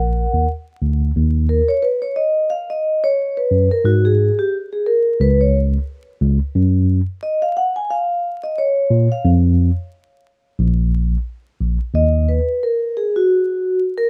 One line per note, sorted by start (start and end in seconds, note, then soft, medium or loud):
0.00 0.26 A#1 medium
0.00 0.45 A#4 medium
0.00 0.44 F#5 medium
0.34 0.46 D#2 medium
0.82 1.10 D2 medium
1.16 1.61 D#2 medium
1.49 1.67 A#4 medium
1.68 1.83 C#5 medium
1.83 2.01 B4 medium
2.02 2.17 C#5 medium
2.16 2.51 D#5 medium
2.50 2.70 F5 medium
2.70 3.05 D#5 medium
3.04 3.38 C#5 loud
3.37 3.69 B4 medium
3.51 3.68 F#2 medium
3.71 3.86 A#4 medium
3.84 4.30 G#2 loud
3.84 4.05 F#4 medium
4.05 4.40 G#4 medium
4.39 4.54 G4 medium
4.73 4.87 G#4 medium
4.86 5.21 A#4 medium
5.20 5.77 C#2 loud
5.20 5.39 B4 medium
5.41 5.56 C#5 medium
6.21 6.38 C#2 loud
6.55 7.00 F#2 loud
7.23 7.41 D#5 medium
7.42 7.57 F5 medium
7.57 7.77 F#5 loud
7.76 7.90 G#5 medium
7.90 8.45 F5 loud
8.44 8.58 D#5 medium
8.58 9.13 C#5 medium
8.90 9.07 A#2 medium
9.12 9.27 F5 medium
9.25 9.70 F2 loud
10.59 11.16 A#1 loud
11.61 11.77 A#1 medium
11.94 12.39 D#2 medium
11.94 12.29 D#5 medium
12.29 12.63 B4 medium
12.63 12.97 A#4 medium
12.97 13.16 G#4 medium
13.16 13.79 F#4 medium
13.98 14.10 A#4 medium